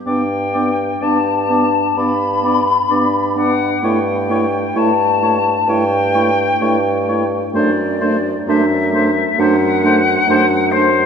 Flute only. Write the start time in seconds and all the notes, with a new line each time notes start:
0.06 G5
1.02 A5
1.97 B5
3.38 F#5
3.84 G5
4.78 A5
5.69 G5
7.55 D5
8.48 E5
9.39 F#5
10.72 C5